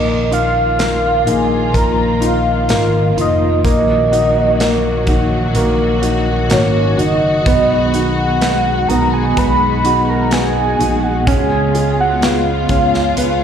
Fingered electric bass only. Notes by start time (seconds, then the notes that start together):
Already playing: A#1
1.27 A#1
1.74 A#1
2.70 G#1
3.17 F1
3.65 A#1
5.07 A#1
5.55 A#1
6.50 G#1
6.98 F#1
7.46 B1
8.89 B1
9.37 B1
10.80 A#1
11.27 C#2
12.69 C#2
13.16 C#2